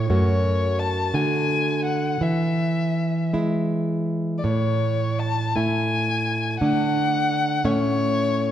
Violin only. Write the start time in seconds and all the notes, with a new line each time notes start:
0.11 C#5
0.79 A5
1.14 G#5
1.85 F#5
2.23 E5
4.38 D5
4.44 C#5
5.19 A5
5.56 G#5
6.61 F#5
7.66 C#5